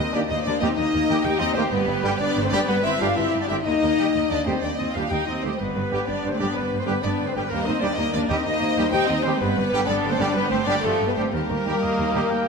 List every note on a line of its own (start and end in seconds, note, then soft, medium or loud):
0.00 0.15 C4 medium
0.00 0.13 D#4 loud
0.00 0.13 D#5 medium
0.00 0.14 D#5 medium
0.00 0.30 D#5 medium
0.00 0.18 D#5 medium
0.13 0.20 D#2 medium
0.13 0.22 D#3 medium
0.13 0.29 A#3 medium
0.13 0.22 A#3 medium
0.13 0.20 D4 loud
0.13 0.20 G4 medium
0.13 0.20 D5 medium
0.13 0.21 D5 medium
0.13 0.30 D5 medium
0.28 0.36 D#2 medium
0.28 0.37 D#2 medium
0.28 0.44 A#3 medium
0.28 0.36 D#4 medium
0.28 0.75 C5 medium
0.28 0.44 D#5 medium
0.28 0.35 D#5 loud
0.28 0.46 D#5 loud
0.43 0.52 D#2 medium
0.43 0.52 D#2 loud
0.43 0.61 A#3 medium
0.43 0.60 D4 loud
0.43 0.60 D5 loud
0.43 0.61 D5 medium
0.47 0.54 D5 medium
0.60 0.68 D#2 medium
0.60 0.67 D#3 medium
0.60 0.67 A#3 medium
0.60 0.78 C4 loud
0.60 0.76 D#4 loud
0.60 0.67 G4 medium
0.60 0.66 D#5 medium
0.60 0.74 D#5 loud
0.60 0.69 D#5 loud
0.75 0.83 D#2 medium
0.75 0.84 D#2 medium
0.75 1.24 A#3 loud
0.75 1.24 D#4 loud
0.75 1.25 A#4 medium
0.75 1.22 D#5 loud
0.75 1.23 D#5 loud
0.75 1.26 D#5 loud
0.93 1.00 D#2 medium
0.93 1.01 D#2 medium
1.08 1.15 D#2 medium
1.08 1.16 D#2 medium
1.08 1.15 D#3 medium
1.08 1.15 A#3 medium
1.08 1.15 G4 medium
1.22 1.31 D#2 medium
1.22 1.41 D#4 loud
1.22 2.18 G4 loud
1.22 1.40 G4 loud
1.22 1.39 G5 loud
1.22 1.41 G5 loud
1.39 1.46 D#2 medium
1.39 1.47 D#2 medium
1.39 1.56 C4 loud
1.39 1.56 D#4 loud
1.39 1.55 D#5 loud
1.39 1.56 D#5 loud
1.54 1.62 D#2 medium
1.54 1.64 D#3 loud
1.54 1.62 A3 loud
1.54 1.64 A#3 medium
1.54 1.71 C4 loud
1.54 1.62 G4 medium
1.54 1.61 C5 loud
1.54 1.71 C5 loud
1.54 1.64 C5 medium
1.70 1.78 G1 loud
1.70 1.78 G2 loud
1.70 2.19 G3 loud
1.70 2.19 B3 loud
1.70 2.18 B4 loud
1.70 1.99 B4 loud
1.70 2.19 B4 loud
1.87 1.93 G1 medium
1.87 1.94 G2 medium
2.03 2.10 G1 medium
2.03 2.10 G2 medium
2.03 2.09 D3 loud
2.03 2.10 G3 loud
2.03 2.11 G4 loud
2.18 2.25 G1 medium
2.18 2.27 G2 medium
2.18 2.43 B3 loud
2.18 2.43 D4 loud
2.18 3.16 B4 loud
2.18 2.43 D5 loud
2.18 2.31 D5 loud
2.22 2.28 D5 loud
2.35 2.42 G1 loud
2.35 2.43 G2 loud
2.41 2.51 A3 medium
2.41 2.48 C4 loud
2.41 2.51 C5 loud
2.45 2.55 C5 loud
2.45 2.56 D5 loud
2.52 2.58 G1 medium
2.52 2.59 G2 medium
2.52 2.60 D3 loud
2.52 2.60 G3 loud
2.52 2.68 B3 loud
2.52 2.59 D4 loud
2.52 2.58 G4 loud
2.52 2.68 D5 loud
2.52 2.71 D5 loud
2.66 2.75 G1 medium
2.66 2.75 G2 medium
2.66 2.75 G3 loud
2.66 2.75 B3 loud
2.66 2.83 B4 loud
2.66 2.84 B4 loud
2.66 2.85 B4 loud
2.83 2.90 G1 medium
2.83 2.92 G2 medium
2.83 2.99 C4 loud
2.83 2.91 E4 loud
2.83 2.99 E5 loud
2.83 3.00 E5 loud
2.83 3.02 E5 loud
2.98 3.07 G1 medium
2.98 3.07 G2 loud
2.98 3.07 D3 medium
2.98 3.07 G3 medium
2.98 3.16 D4 loud
2.98 3.15 F4 loud
2.98 3.06 G4 medium
2.98 3.15 F5 medium
2.98 3.16 F5 loud
2.98 3.17 F5 loud
3.15 3.23 G1 medium
3.15 3.24 G2 medium
3.15 3.41 C4 loud
3.15 3.40 E4 loud
3.15 3.65 G4 medium
3.15 3.40 E5 loud
3.15 3.27 E5 loud
3.33 3.40 G1 medium
3.33 3.39 G2 medium
3.40 3.49 B3 medium
3.40 3.48 D4 loud
3.40 3.48 D5 medium
3.40 3.49 D5 medium
3.40 3.50 D5 medium
3.48 3.56 G1 medium
3.48 3.56 G2 medium
3.48 3.55 D3 medium
3.48 3.54 G3 medium
3.48 3.56 C4 loud
3.48 3.65 E4 loud
3.48 3.56 G4 medium
3.48 3.55 E5 loud
3.48 3.56 E5 loud
3.48 3.56 E5 medium
3.63 3.72 D#2 loud
3.63 3.73 D#2 medium
3.63 4.29 A#3 loud
3.63 4.28 D#4 loud
3.63 4.09 A#4 medium
3.63 4.28 D#5 loud
3.63 4.32 D#5 loud
3.68 4.30 D#5 loud
3.83 3.89 D#2 medium
3.98 4.04 D#2 medium
3.98 4.06 D#3 medium
3.98 4.06 G3 medium
3.98 4.04 G4 medium
4.12 4.20 D#2 medium
4.12 4.21 D#2 medium
4.12 4.58 D#5 medium
4.30 4.36 D#2 medium
4.30 4.46 A#3 medium
4.30 4.46 D4 loud
4.30 4.46 D5 medium
4.30 4.47 D5 medium
4.46 4.53 D#2 medium
4.46 4.54 D#3 medium
4.46 4.54 G3 medium
4.46 4.53 A3 medium
4.46 4.62 C4 loud
4.46 4.53 G4 medium
4.46 4.62 C5 medium
4.46 4.61 C5 medium
4.46 4.62 C5 medium
4.61 4.69 D#2 medium
4.61 4.70 D#2 medium
4.61 4.69 A#3 medium
4.61 4.69 D4 medium
4.61 4.78 D5 loud
4.61 4.69 D5 loud
4.61 4.79 D5 medium
4.61 4.70 G5 medium
4.77 4.86 D#2 medium
4.77 4.95 C4 medium
4.77 4.94 D#4 medium
4.77 4.94 D#5 medium
4.77 4.95 D#5 medium
4.77 4.94 D#5 medium
4.88 4.95 F5 medium
4.93 5.01 D#2 medium
4.93 5.02 D#2 medium
4.93 5.01 D#3 medium
4.93 5.01 G3 medium
4.93 5.11 D4 medium
4.93 5.10 F4 medium
4.93 5.02 G4 medium
4.93 5.10 F5 medium
4.93 5.02 F5 medium
4.93 5.02 G5 medium
5.09 5.17 D#2 medium
5.09 5.18 D#2 medium
5.09 5.27 D#4 medium
5.09 5.26 G4 medium
5.09 5.35 D#5 medium
5.09 5.26 G5 medium
5.09 5.27 G5 medium
5.09 5.18 G5 medium
5.26 5.34 D#2 medium
5.26 5.44 C4 medium
5.26 5.43 D#4 loud
5.26 5.32 D#5 medium
5.26 5.43 D#5 medium
5.26 5.34 D#5 medium
5.36 5.44 F5 medium
5.42 5.50 D#2 medium
5.42 5.49 D#3 medium
5.42 5.49 G3 medium
5.42 5.60 A3 medium
5.42 5.59 C4 medium
5.42 5.50 G4 medium
5.42 5.48 C5 medium
5.42 5.50 C5 medium
5.42 5.59 C5 medium
5.42 5.60 D#5 medium
5.57 5.67 G1 medium
5.57 5.66 G2 loud
5.57 6.08 G3 medium
5.57 6.08 B3 loud
5.57 6.06 B4 medium
5.76 5.83 G1 medium
5.76 5.82 G2 medium
5.91 5.99 G1 medium
5.91 5.98 G2 medium
5.91 5.97 D3 medium
5.91 5.97 G3 medium
5.91 5.98 G4 medium
6.06 6.15 G1 medium
6.06 6.14 G2 medium
6.06 6.31 B3 medium
6.06 6.31 D4 loud
6.06 6.31 D5 medium
6.06 6.33 D5 medium
6.06 6.31 D5 medium
6.24 6.31 G1 medium
6.24 6.30 G2 medium
6.28 6.39 A3 medium
6.28 6.38 C5 medium
6.28 6.39 C5 medium
6.33 6.36 C4 loud
6.33 6.54 D5 medium
6.37 6.47 G2 medium
6.37 6.45 D3 medium
6.37 6.45 G3 medium
6.37 6.56 B3 loud
6.37 6.55 D4 loud
6.37 6.46 G4 medium
6.37 6.54 D5 medium
6.41 6.47 G1 medium
6.53 6.63 G1 medium
6.53 6.63 G2 medium
6.53 6.80 G3 medium
6.53 6.78 B4 loud
6.53 7.46 B4 loud
6.53 6.79 B4 medium
6.53 6.78 B4 medium
6.57 6.80 B3 loud
6.72 6.79 G1 medium
6.72 6.79 G2 medium
6.79 6.88 A3 medium
6.79 6.88 C4 loud
6.79 6.87 C5 medium
6.79 6.86 C5 medium
6.79 6.87 C5 medium
6.85 6.94 G1 medium
6.85 6.95 G2 medium
6.85 6.92 D3 medium
6.85 6.91 G3 medium
6.85 6.94 G3 medium
6.85 7.04 B3 loud
6.85 6.93 G4 medium
6.85 7.02 B4 medium
6.85 7.03 B4 medium
6.85 6.93 B4 medium
7.03 7.10 G1 medium
7.03 7.10 G2 medium
7.03 7.27 B3 medium
7.03 7.27 D4 loud
7.03 7.27 D5 medium
7.03 7.11 D5 medium
7.03 7.28 D5 medium
7.20 7.26 G1 medium
7.20 7.26 G2 medium
7.26 7.35 A3 medium
7.26 7.31 C4 loud
7.26 7.35 C5 medium
7.34 7.42 G1 medium
7.34 7.42 G2 medium
7.34 7.42 D3 medium
7.34 7.42 G3 medium
7.34 7.48 G3 medium
7.34 7.51 B3 loud
7.34 7.41 G4 medium
7.34 7.50 B4 medium
7.49 7.58 D#2 loud
7.49 7.58 D#2 medium
7.49 7.66 G3 medium
7.49 7.66 A#3 loud
7.49 7.64 A#4 loud
7.49 7.66 A#4 loud
7.49 7.98 C5 loud
7.64 7.74 D#2 medium
7.64 7.82 C4 medium
7.64 7.83 D#4 loud
7.64 7.79 D#5 loud
7.64 7.82 D#5 medium
7.64 7.83 D#5 medium
7.80 7.89 D#2 medium
7.80 7.90 D#2 medium
7.80 7.87 D#3 medium
7.80 7.87 G3 medium
7.80 7.96 A#3 medium
7.80 7.97 D4 loud
7.80 7.88 G4 medium
7.80 7.97 D5 medium
7.80 7.97 D5 loud
7.80 7.98 D5 medium
7.96 8.04 D#2 medium
7.96 8.05 D#2 medium
7.96 8.13 A#3 loud
7.96 8.06 D#4 medium
7.96 8.44 A#4 medium
7.96 8.12 D#5 loud
7.96 8.13 D#5 loud
7.96 8.14 D#5 loud
8.12 8.19 D#2 loud
8.12 8.21 D#2 loud
8.12 8.30 A#3 medium
8.12 8.29 D4 loud
8.12 8.30 D5 medium
8.12 8.20 D5 loud
8.12 8.30 D5 loud
8.28 8.35 D#2 medium
8.28 8.37 D#2 medium
8.28 8.35 D#3 medium
8.28 8.37 G3 loud
8.28 8.46 C4 loud
8.28 8.44 D#4 loud
8.28 8.35 G4 medium
8.28 8.44 D#5 loud
8.28 8.43 D#5 loud
8.28 8.45 D#5 loud
8.44 8.52 D#2 medium
8.44 8.93 A#3 loud
8.44 8.92 D#4 loud
8.44 9.41 C5 loud
8.44 8.91 D#5 loud
8.44 8.72 D#5 loud
8.60 8.67 D#2 medium
8.60 8.68 D#2 medium
8.77 8.83 D#2 loud
8.77 8.84 D#3 medium
8.77 8.85 G3 medium
8.77 8.83 G4 medium
8.91 8.99 D#2 medium
8.91 9.08 D#4 loud
8.91 9.08 G4 loud
8.91 9.08 G5 loud
8.91 9.00 G5 loud
8.91 9.09 G5 loud
9.08 9.15 D#2 medium
9.08 9.16 D#2 medium
9.08 9.24 C4 loud
9.08 9.24 D#4 loud
9.08 9.24 D#5 loud
9.08 9.23 D#5 loud
9.08 9.25 D#5 loud
9.22 9.31 D#2 medium
9.22 9.31 D#3 loud
9.22 9.31 G3 medium
9.22 9.39 A3 loud
9.22 9.40 C4 loud
9.22 9.31 G4 medium
9.22 9.39 C5 loud
9.22 9.40 C5 loud
9.22 9.31 C5 medium
9.39 9.47 G1 loud
9.39 9.47 G2 loud
9.39 9.88 G3 loud
9.39 9.87 B3 loud
9.39 9.87 B4 medium
9.39 9.87 B4 loud
9.39 9.90 B4 loud
9.39 9.88 B4 loud
9.56 9.63 G1 medium
9.56 9.62 G2 medium
9.72 9.79 G1 medium
9.72 9.79 G2 medium
9.72 9.79 D3 loud
9.72 9.80 G3 loud
9.72 9.78 G4 loud
9.86 9.94 G1 medium
9.86 9.94 G2 medium
9.86 10.11 B3 loud
9.86 10.11 D4 loud
9.86 10.35 A4 loud
9.86 9.94 D5 loud
9.86 10.11 D5 loud
9.86 10.12 D5 loud
10.04 10.10 G1 loud
10.04 10.10 G2 loud
10.09 10.19 A3 loud
10.09 10.19 C4 loud
10.09 10.18 C5 loud
10.09 10.16 C5 loud
10.09 10.22 C5 medium
10.17 10.26 G1 medium
10.17 10.26 G2 medium
10.17 10.27 D3 loud
10.17 10.27 G3 loud
10.17 10.25 B3 loud
10.17 10.36 D4 loud
10.17 10.26 G4 loud
10.17 10.34 D5 loud
10.17 10.35 D5 loud
10.17 10.26 D5 loud
10.33 10.42 G1 loud
10.33 10.42 G2 medium
10.33 10.40 G3 loud
10.33 10.52 B3 loud
10.33 11.31 G4 loud
10.33 10.50 B4 loud
10.33 10.43 B4 loud
10.33 10.51 B4 loud
10.49 10.58 G1 medium
10.49 10.58 G2 medium
10.49 10.66 A3 loud
10.49 10.59 C4 loud
10.49 10.66 C5 loud
10.49 10.67 C5 loud
10.49 10.59 C5 loud
10.65 10.75 G1 medium
10.65 10.73 G2 loud
10.65 10.75 D3 medium
10.65 10.75 G3 loud
10.65 10.73 B3 loud
10.65 10.75 D4 loud
10.65 10.74 G4 medium
10.65 10.83 D5 loud
10.65 10.86 D5 loud
10.82 10.90 G1 medium
10.82 10.91 G2 medium
10.82 11.07 F3 loud
10.82 11.08 A3 loud
10.82 11.07 A4 loud
10.82 11.08 A4 loud
11.00 11.06 G1 medium
11.00 11.07 G2 medium
11.07 11.11 G3 medium
11.07 11.16 B3 medium
11.07 11.11 B4 medium
11.07 11.16 B4 medium
11.07 11.20 B4 medium
11.14 11.23 G1 medium
11.14 11.24 G2 medium
11.14 11.23 D3 medium
11.14 11.23 G3 medium
11.14 11.32 A3 loud
11.14 11.32 C4 loud
11.14 11.23 G4 medium
11.14 11.31 C5 loud
11.14 11.21 C5 loud
11.18 11.33 C5 medium
11.31 11.39 D#2 loud
11.31 11.40 D#2 loud
11.31 12.48 G3 medium
11.31 12.48 A#3 loud
11.31 12.48 G4 medium
11.31 12.48 A#4 loud
11.49 11.55 D#2 medium
11.49 11.56 D#2 medium
11.65 11.72 D#2 medium
11.65 11.71 D#3 medium
11.65 11.72 G3 medium
11.65 11.72 G4 medium
11.81 11.88 D#2 medium
11.81 11.89 D#2 medium
11.81 12.31 D#5 medium
11.98 12.04 D#2 loud
11.98 12.05 D#2 loud
12.13 12.20 D#2 medium
12.13 12.21 D#2 medium
12.13 12.19 D#3 medium
12.13 12.19 G3 medium
12.13 12.20 G4 medium
12.30 12.37 D#2 medium
12.30 12.38 D#2 medium
12.30 12.48 G5 medium